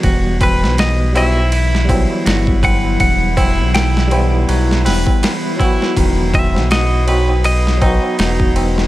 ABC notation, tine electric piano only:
X:1
M:4/4
L:1/8
Q:"Swing 16ths" 1/4=81
K:Em
V:1 name="Tine electric piano"
[E,G,B,F]3 [G,B,EF] z [F,G,B,E]3- | [F,G,B,E]3 [G,B,E]4 [F,B,Ff]- | [F,B,Ff]3 [F,B,^DF] z [F,B,DF]3 |]